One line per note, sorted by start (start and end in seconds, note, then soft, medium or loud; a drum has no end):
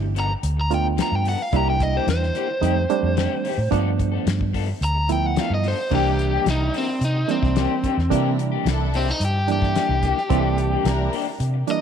0.00 0.33 G1 medium
0.00 0.13 A3 medium
0.00 0.13 B3 medium
0.00 0.13 D4 medium
0.00 0.13 E4 medium
0.00 muted clean electric guitar stroke soft
0.15 0.29 F3 medium
0.15 0.30 B3 medium
0.15 0.29 D4 medium
0.15 0.29 A4 medium
0.15 snare soft
0.15 closed hi-hat medium
0.20 0.31 A#5 medium
0.30 muted clean electric guitar stroke soft
0.43 0.99 D2 medium
0.43 closed hi-hat medium
0.57 muted clean electric guitar stroke soft
0.61 0.72 A#5 medium
0.70 1.30 A3 medium
0.70 1.30 B3 medium
0.70 1.30 D4 medium
0.70 1.30 F4 medium
0.70 muted clean electric guitar stroke soft
0.70 closed hi-hat medium
0.74 0.86 G5 medium
0.85 muted clean electric guitar stroke soft
0.97 1.14 F3 medium
0.97 1.15 B3 medium
0.97 1.15 D4 medium
0.97 1.15 A4 medium
0.97 snare loud
0.97 closed hi-hat medium
1.02 1.15 A#5 medium
1.12 1.34 G2 medium
1.12 1.27 G5 medium
1.24 1.39 F3 medium
1.24 1.39 B3 medium
1.24 1.39 D4 medium
1.24 1.38 A4 medium
1.24 open hi-hat medium
1.29 1.41 F#5 medium
1.39 1.54 F5 medium
1.39 muted clean electric guitar stroke soft
1.53 1.98 C2 medium
1.53 1.69 E3 medium
1.53 2.32 G3 medium
1.53 2.32 A#3 medium
1.53 1.70 A#3 medium
1.53 2.32 D4 medium
1.53 1.70 D4 medium
1.53 2.32 E4 medium
1.53 1.70 G4 medium
1.53 1.68 A#5 medium
1.53 kick medium
1.53 closed hi-hat medium
1.70 1.81 G5 medium
1.80 1.95 D#5 medium
1.80 muted clean electric guitar stroke soft
1.80 kick medium
1.80 closed hi-hat medium
1.93 2.07 A#3 soft
1.93 2.07 D4 soft
1.93 2.07 G4 soft
1.93 2.09 C5 medium
2.07 2.30 E2 medium
2.07 3.69 C5 medium
2.07 muted clean electric guitar stroke soft
2.07 snare loud
2.07 closed hi-hat medium
2.21 muted clean electric guitar stroke soft
2.21 snare soft
2.34 2.49 E3 medium
2.34 2.48 A#3 medium
2.34 2.48 D4 medium
2.34 2.47 G4 medium
2.34 closed hi-hat medium
2.48 muted clean electric guitar stroke soft
2.61 2.84 F2 medium
2.61 2.76 D#3 medium
2.61 2.84 G3 medium
2.61 2.84 A3 medium
2.61 2.76 A3 medium
2.61 2.84 C4 medium
2.61 2.76 C4 medium
2.61 2.84 D#4 medium
2.61 2.75 G4 medium
2.61 closed hi-hat medium
2.76 muted clean electric guitar stroke medium
2.89 3.49 G3 medium
2.89 3.49 A3 medium
2.89 3.49 C4 medium
2.89 3.49 D4 medium
2.89 muted clean electric guitar stroke soft
2.89 closed hi-hat medium
3.03 3.26 F2 medium
3.03 muted clean electric guitar stroke soft
3.16 3.33 D#3 medium
3.16 3.34 A3 loud
3.16 3.34 C4 medium
3.16 3.34 G4 loud
3.16 snare loud
3.16 closed hi-hat medium
3.44 3.58 D#3 medium
3.44 3.58 A3 medium
3.44 3.58 C4 medium
3.44 3.57 G4 medium
3.44 open hi-hat medium
3.58 3.69 A2 medium
3.58 muted clean electric guitar stroke soft
3.71 4.17 G2 medium
3.71 4.50 F3 medium
3.71 3.88 F3 medium
3.71 4.51 A3 medium
3.71 4.50 B3 medium
3.71 3.88 B3 loud
3.71 4.50 D4 medium
3.71 3.89 D4 medium
3.71 3.89 A4 medium
3.71 kick loud
3.71 closed hi-hat medium
3.99 muted clean electric guitar stroke soft
3.99 kick medium
3.99 closed hi-hat medium
4.12 4.26 B3 soft
4.12 4.26 D4 soft
4.12 4.26 A4 medium
4.26 4.72 G2 medium
4.26 muted clean electric guitar stroke soft
4.26 snare loud
4.26 closed hi-hat medium
4.40 muted clean electric guitar stroke soft
4.40 kick medium
4.53 4.68 F3 medium
4.53 4.68 B3 medium
4.53 4.67 D4 medium
4.53 4.66 A4 medium
4.53 kick medium
4.53 open hi-hat medium
4.67 muted clean electric guitar stroke soft
4.81 5.38 D2 medium
4.81 5.10 A#5 medium
4.81 closed hi-hat medium
4.95 muted clean electric guitar stroke soft
5.09 5.68 F3 medium
5.09 5.68 A3 medium
5.09 5.69 B3 medium
5.09 5.68 E4 medium
5.09 5.26 G5 medium
5.09 muted clean electric guitar stroke soft
5.09 closed hi-hat medium
5.23 5.41 F#5 medium
5.23 muted clean electric guitar stroke soft
5.36 5.53 F3 medium
5.36 5.53 B3 medium
5.36 5.54 D4 medium
5.36 5.54 A4 medium
5.36 snare loud
5.36 closed hi-hat medium
5.41 5.52 F5 medium
5.50 5.73 G2 medium
5.54 5.66 D#5 medium
5.63 5.78 F3 medium
5.63 5.78 B3 medium
5.63 5.78 D4 medium
5.63 5.77 A4 medium
5.63 open hi-hat medium
5.68 5.93 C5 medium
5.78 muted clean electric guitar stroke soft
5.91 6.36 C2 medium
5.91 6.70 E3 medium
5.91 6.08 E3 medium
5.91 6.70 G3 medium
5.91 6.70 A#3 medium
5.91 6.08 A#3 medium
5.91 6.70 D4 medium
5.91 6.19 D4 medium
5.91 6.08 D4 medium
5.91 6.19 E4 medium
5.91 6.09 G4 medium
5.91 6.19 A#4 medium
5.91 kick medium
5.91 crash medium
5.95 6.46 G4 medium
6.18 muted clean electric guitar stroke soft
6.18 closed hi-hat medium
6.32 6.46 A#3 soft
6.32 6.46 D4 soft
6.32 6.46 G4 medium
6.46 6.69 C2 medium
6.46 6.87 D4 medium
6.46 6.87 E4 medium
6.46 6.87 A#4 medium
6.46 muted clean electric guitar stroke soft
6.46 snare loud
6.46 closed hi-hat medium
6.50 6.75 D#4 medium
6.60 muted clean electric guitar stroke soft
6.73 6.87 E3 medium
6.73 6.87 A#3 medium
6.73 6.87 D4 medium
6.73 6.86 G4 medium
6.73 open hi-hat medium
6.78 7.02 C4 medium
6.87 muted clean electric guitar stroke soft
7.01 7.24 C3 medium
7.01 7.29 D#4 medium
7.01 closed hi-hat medium
7.14 muted clean electric guitar stroke soft
7.28 7.88 E3 medium
7.28 7.87 G3 medium
7.28 7.88 A#3 medium
7.28 8.36 C4 medium
7.28 7.88 D4 medium
7.28 7.70 D4 medium
7.28 7.70 E4 medium
7.28 7.70 A#4 medium
7.28 muted clean electric guitar stroke soft
7.28 closed hi-hat medium
7.42 7.65 C2 medium
7.42 muted clean electric guitar stroke soft
7.42 kick medium
7.42 snare soft
7.55 7.72 E3 medium
7.55 7.73 A#3 medium
7.55 7.73 D4 medium
7.55 7.73 G4 medium
7.55 snare loud
7.55 closed hi-hat medium
7.83 7.97 E3 medium
7.83 7.97 A#3 medium
7.83 7.97 D4 medium
7.83 7.96 G4 medium
7.83 kick medium
7.83 closed hi-hat medium
7.97 8.08 E2 medium
7.97 muted clean electric guitar stroke soft
7.97 snare soft
8.10 8.56 C3 medium
8.10 8.89 E3 medium
8.10 8.27 E3 medium
8.10 8.89 G3 medium
8.10 8.90 A#3 medium
8.10 8.28 A#3 medium
8.10 8.90 D4 medium
8.10 8.38 D4 medium
8.10 8.28 D4 loud
8.10 8.38 E4 medium
8.10 8.28 G4 medium
8.10 8.38 A#4 medium
8.10 kick medium
8.10 closed hi-hat medium
8.38 muted clean electric guitar stroke soft
8.38 closed hi-hat medium
8.52 8.65 A#3 medium
8.52 8.66 D4 medium
8.52 8.65 G4 medium
8.65 9.10 C2 loud
8.65 9.07 D4 medium
8.65 9.07 E4 medium
8.65 9.07 A4 loud
8.65 muted clean electric guitar stroke soft
8.65 snare loud
8.65 closed hi-hat medium
8.80 muted clean electric guitar stroke soft
8.93 9.07 E3 medium
8.93 9.08 A#3 medium
8.93 9.11 C4 medium
8.93 9.07 D4 medium
8.93 9.07 G4 medium
8.93 open hi-hat medium
9.08 9.22 D#4 medium
9.08 muted clean electric guitar stroke soft
9.08 snare soft
9.20 9.77 G2 medium
9.20 closed hi-hat medium
9.25 9.49 G4 medium
9.35 muted clean electric guitar stroke soft
9.48 10.07 E3 medium
9.48 10.07 G3 medium
9.48 10.07 A#3 medium
9.48 10.07 D4 medium
9.48 9.89 D4 medium
9.48 9.89 E4 medium
9.48 9.89 A4 medium
9.48 muted clean electric guitar stroke soft
9.48 closed hi-hat medium
9.52 11.11 G4 medium
9.62 muted clean electric guitar stroke soft
9.62 kick medium
9.62 snare soft
9.76 9.92 E3 medium
9.76 9.92 A#3 medium
9.76 9.93 D4 medium
9.76 9.93 G4 loud
9.76 snare loud
9.76 closed hi-hat medium
9.89 10.12 C2 medium
10.03 10.17 E3 medium
10.03 10.17 A#3 medium
10.03 10.17 D4 medium
10.03 10.16 G4 medium
10.03 kick medium
10.03 closed hi-hat medium
10.17 muted clean electric guitar stroke soft
10.17 snare soft
10.29 10.75 C2 loud
10.29 11.09 E3 medium
10.29 10.47 E3 medium
10.29 11.09 G3 medium
10.29 11.09 A#3 medium
10.29 10.47 A#3 medium
10.29 11.09 C4 medium
10.29 10.58 D4 medium
10.29 10.48 D4 medium
10.29 10.58 E4 medium
10.29 10.48 G4 loud
10.29 10.58 A4 medium
10.29 kick loud
10.29 closed hi-hat medium
10.58 muted clean electric guitar stroke soft
10.58 closed hi-hat medium
10.71 10.84 A#3 soft
10.71 10.85 D4 medium
10.71 10.85 G4 medium
10.85 11.07 C2 medium
10.85 11.26 D4 loud
10.85 11.26 E4 medium
10.85 11.26 A#4 loud
10.85 muted clean electric guitar stroke soft
10.85 snare loud
10.85 closed hi-hat medium
10.99 muted clean electric guitar stroke medium
11.12 11.26 E3 medium
11.12 11.27 A#3 medium
11.12 11.26 D4 loud
11.12 11.25 G4 medium
11.12 open hi-hat medium
11.26 muted clean electric guitar stroke soft
11.40 11.62 C3 loud
11.40 closed hi-hat medium
11.54 muted clean electric guitar stroke soft
11.67 11.81 E3 medium
11.67 11.81 G3 medium
11.67 11.81 A#3 medium
11.67 11.81 D4 medium
11.67 11.81 E4 medium
11.67 11.81 A#4 medium
11.67 muted clean electric guitar stroke soft
11.67 closed hi-hat medium
11.71 11.81 D#5 loud